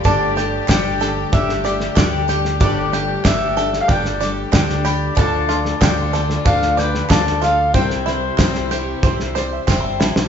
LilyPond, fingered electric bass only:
\new Staff \with { instrumentName = "Fingered electric bass" } { \clef bass \time 4/4 \key g \mixolydian \tempo 4 = 94 g,,4 g,,4 g,,4 d,4 | g,,4 g,,4 g,,4 d,4 | d,4 d,4 d,4 d,4 | c,4 c,4 c,4 e,,16 g,,16 a,,16 b,,16 | }